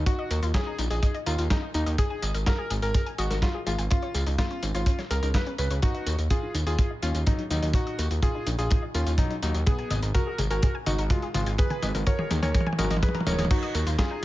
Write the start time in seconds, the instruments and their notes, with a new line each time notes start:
0.06 synth arpeggio sound D#4, electric grand piano F#4, kick, closed hi-hat, tambourine
0.19 synth arpeggio sound D#5
0.31 analog synth bass D#2, synth arpeggio sound A#4, closed hi-hat, tambourine
0.42 analog synth bass D#2, synth arpeggio sound F4, closed hi-hat, tambourine
0.54 synth arpeggio sound C#4, electric grand piano G#4, kick, snare, closed hi-hat, tambourine
0.66 synth arpeggio sound D#4
0.78 analog synth bass A#1, synth arpeggio sound D#4, closed hi-hat, tambourine
0.90 analog synth bass A#1, electric grand piano G#4, synth arpeggio sound D#5, closed hi-hat, tambourine
1.02 synth arpeggio sound D#4, kick, closed hi-hat, tambourine
1.14 synth arpeggio sound D#5, closed hi-hat
1.26 analog synth bass D#2, electric grand piano F4, synth arpeggio sound A#4, closed hi-hat, tambourine
1.38 analog synth bass D#2, synth arpeggio sound F4, closed hi-hat, tambourine
1.50 synth arpeggio sound C#4, electric grand piano D#4, kick, snare, closed hi-hat, tambourine
1.62 synth arpeggio sound D#4
1.74 analog synth bass D#2, synth arpeggio sound D#4, electric grand piano D#4, closed hi-hat, tambourine
1.86 analog synth bass D#2, synth arpeggio sound D#5, closed hi-hat, tambourine
1.98 synth arpeggio sound G#4, electric grand piano G#4, kick, closed hi-hat, tambourine
2.10 synth arpeggio sound G#5
2.22 analog synth bass G#1, synth arpeggio sound D#5, closed hi-hat, tambourine
2.34 analog synth bass G#1, synth arpeggio sound A#4, closed hi-hat, tambourine
2.46 synth arpeggio sound F#4, electric grand piano A#4, kick, snare, closed hi-hat, tambourine
2.58 synth arpeggio sound G#4
2.70 analog synth bass G#1, synth arpeggio sound G#4, closed hi-hat, tambourine
2.82 analog synth bass G#1, electric grand piano A#4, synth arpeggio sound G#5, closed hi-hat, tambourine
2.94 synth arpeggio sound G#4, kick, closed hi-hat, tambourine
3.06 synth arpeggio sound G#5, closed hi-hat
3.18 analog synth bass G#1, electric grand piano F#4, synth arpeggio sound D#5, closed hi-hat, tambourine
3.30 analog synth bass G#1, synth arpeggio sound A#4, snare, closed hi-hat, tambourine
3.42 electric grand piano F4, synth arpeggio sound F#4, kick, snare, closed hi-hat, tambourine
3.54 synth arpeggio sound G#4
3.66 analog synth bass G#1, electric grand piano F4, synth arpeggio sound G#4, closed hi-hat, tambourine
3.78 analog synth bass G#1, synth arpeggio sound G#5, closed hi-hat, tambourine
3.90 synth arpeggio sound C#4, electric grand piano F4, kick, closed hi-hat, tambourine
4.02 synth arpeggio sound C#5, closed hi-hat
4.14 analog synth bass C#2, synth arpeggio sound G#4, closed hi-hat, tambourine
4.27 analog synth bass C#2, synth arpeggio sound D#4, closed hi-hat, tambourine
4.38 synth arpeggio sound B3, electric grand piano F4, kick, snare, closed hi-hat, tambourine
4.51 synth arpeggio sound C#4, closed hi-hat
4.63 analog synth bass G#1, synth arpeggio sound C#4, closed hi-hat, tambourine
4.75 analog synth bass G#1, electric grand piano F4, synth arpeggio sound C#5, closed hi-hat, tambourine
4.86 synth arpeggio sound C#4, kick, closed hi-hat, tambourine
4.99 synth arpeggio sound C#5, snare, closed hi-hat
5.11 analog synth bass C#2, synth arpeggio sound G#4, electric grand piano A#4, closed hi-hat, tambourine
5.23 analog synth bass C#2, synth arpeggio sound D#4, closed hi-hat, tambourine
5.34 synth arpeggio sound B3, electric grand piano B4, kick, snare, closed hi-hat, tambourine
5.47 synth arpeggio sound C#4, closed hi-hat
5.58 analog synth bass C#2, synth arpeggio sound C#4, electric grand piano B4, closed hi-hat, tambourine
5.70 analog synth bass C#2, synth arpeggio sound C#5, closed hi-hat, tambourine
5.82 synth arpeggio sound D#4, electric grand piano D#4 F#4, kick, closed hi-hat, mid tom, tambourine
5.95 synth arpeggio sound D#5, closed hi-hat
6.06 analog synth bass D#2, synth arpeggio sound A#4, closed hi-hat, tambourine
6.18 analog synth bass D#2, synth arpeggio sound F4, closed hi-hat, tambourine
6.30 synth arpeggio sound C#4, electric grand piano F4 G#4, kick, closed hi-hat, mid tom, tambourine
6.43 synth arpeggio sound D#4
6.55 analog synth bass D#2, synth arpeggio sound D#4, closed hi-hat, tambourine
6.67 analog synth bass D#2, electric grand piano F4 G#4, synth arpeggio sound D#5, closed hi-hat, tambourine
6.79 synth arpeggio sound D#4, kick, closed hi-hat, mid tom, tambourine
6.91 synth arpeggio sound D#5
7.02 analog synth bass D#2, electric grand piano C#4 F4, synth arpeggio sound A#4, closed hi-hat, tambourine
7.14 analog synth bass D#2, synth arpeggio sound F4, closed hi-hat, tambourine
7.27 electric grand piano F#3 D#4, synth arpeggio sound C#4, kick, closed hi-hat, mid tom, tambourine
7.38 synth arpeggio sound D#4, closed hi-hat
7.50 analog synth bass D#2, electric grand piano F#3 D#4, synth arpeggio sound D#4, closed hi-hat, tambourine
7.63 analog synth bass D#2, synth arpeggio sound D#5, closed hi-hat, tambourine
7.73 synth arpeggio sound D#4, electric grand piano D#4 F#4, kick, closed hi-hat, mid tom, tambourine
7.87 synth arpeggio sound D#5, closed hi-hat
7.99 analog synth bass D#2, synth arpeggio sound A#4, closed hi-hat, tambourine
8.11 analog synth bass D#2, synth arpeggio sound F4, closed hi-hat, tambourine
8.22 synth arpeggio sound C#4, electric grand piano F4 G#4, kick, closed hi-hat, mid tom, tambourine
8.35 synth arpeggio sound D#4
8.47 analog synth bass A#1, synth arpeggio sound D#4, closed hi-hat, tambourine
8.58 analog synth bass A#1, electric grand piano F4 G#4, synth arpeggio sound D#5, closed hi-hat, tambourine
8.71 synth arpeggio sound D#4, kick, closed hi-hat, mid tom, tambourine
8.82 synth arpeggio sound D#5
8.94 analog synth bass D#2, electric grand piano C#4 F4, synth arpeggio sound A#4, closed hi-hat, tambourine
9.06 analog synth bass D#2, synth arpeggio sound F4, closed hi-hat, tambourine
9.18 electric grand piano F#3 D#4, synth arpeggio sound C#4, kick, closed hi-hat, mid tom, tambourine
9.31 synth arpeggio sound D#4, closed hi-hat
9.42 analog synth bass D#2, electric grand piano F#3 D#4, synth arpeggio sound D#4, closed hi-hat, tambourine
9.54 analog synth bass D#2, synth arpeggio sound D#5, closed hi-hat, tambourine
9.66 electric grand piano B3 G#4, synth arpeggio sound G#4, kick, closed hi-hat, mid tom, tambourine
9.79 synth arpeggio sound G#5, closed hi-hat
9.90 analog synth bass G#1, synth arpeggio sound D#5, closed hi-hat, mid tom, tambourine
10.02 analog synth bass G#1, synth arpeggio sound A#4, closed hi-hat, tambourine
10.14 electric grand piano F#4 A#4, synth arpeggio sound F#4, kick, closed hi-hat, mid tom, tambourine
10.27 synth arpeggio sound G#4
10.38 analog synth bass G#1, synth arpeggio sound G#4, closed hi-hat, mid tom, tambourine
10.50 analog synth bass G#1, electric grand piano F#4 A#4, synth arpeggio sound G#5, closed hi-hat, tambourine
10.63 synth arpeggio sound G#4, kick, closed hi-hat, mid tom, tambourine
10.75 synth arpeggio sound G#5
10.86 analog synth bass G#1, electric grand piano D#4 F#4, synth arpeggio sound D#5, closed hi-hat, mid tom, tambourine
10.98 analog synth bass G#1, synth arpeggio sound A#4, closed hi-hat, tambourine
11.10 electric grand piano G#3 F4, synth arpeggio sound F#4, kick, closed hi-hat, mid tom, tambourine
11.22 synth arpeggio sound G#4, closed hi-hat
11.34 analog synth bass G#1, electric grand piano G#3 F4, synth arpeggio sound G#4, closed hi-hat, mid tom, tambourine
11.46 analog synth bass G#1, synth arpeggio sound G#5, closed hi-hat, tambourine
11.58 electric grand piano G#4 B4, synth arpeggio sound G#4, kick, closed hi-hat, mid tom, tambourine
11.70 synth arpeggio sound G#5, closed hi-hat, mid tom
11.83 analog synth bass G#1, synth arpeggio sound D#5, closed hi-hat, mid tom, tambourine
11.95 analog synth bass G#1, synth arpeggio sound A#4, closed hi-hat, mid tom, tambourine
12.07 synth arpeggio sound F#4, electric grand piano A#4 C#5, kick, closed hi-hat, mid tom, tambourine
12.19 synth arpeggio sound G#4, mid tom
12.31 analog synth bass D#2, synth arpeggio sound G#4, closed hi-hat, mid tom, tambourine
12.42 analog synth bass D#2, electric grand piano A#4 C#5, synth arpeggio sound G#5, closed hi-hat, mid tom, tambourine
12.55 synth arpeggio sound G#4, kick, closed hi-hat, mid tom, tambourine
12.61 mid tom
12.67 synth arpeggio sound G#5, mid tom
12.73 mid tom
12.78 analog synth bass G#1, synth arpeggio sound G#3, electric grand piano F#4 A#4, closed hi-hat, mid tom, tambourine
12.85 mid tom
12.90 analog synth bass G#1, synth arpeggio sound D#5, closed hi-hat, mid tom, tambourine
12.97 mid tom
13.03 electric grand piano G#4 B4, synth arpeggio sound B4, kick, closed hi-hat, mid tom, tambourine
13.09 mid tom
13.15 synth arpeggio sound A#4, closed hi-hat, mid tom
13.21 mid tom
13.26 analog synth bass D#1, electric grand piano A#4 C#5, synth arpeggio sound D#5, closed hi-hat, mid tom, tambourine
13.32 mid tom
13.38 analog synth bass D#1, synth arpeggio sound G#4, closed hi-hat, mid tom, tambourine
13.45 mid tom
13.50 synth arpeggio sound D#4, electric grand piano D#4 F#4, kick, closed hi-hat, tambourine, crash
13.63 synth arpeggio sound D#5, closed hi-hat
13.75 analog synth bass D#2, synth arpeggio sound A#4, closed hi-hat, tambourine
13.87 analog synth bass D#2, synth arpeggio sound F4, closed hi-hat, tambourine
13.98 synth arpeggio sound C#4, electric grand piano F4 G#4, kick, snare, closed hi-hat, tambourine
14.11 synth arpeggio sound D#4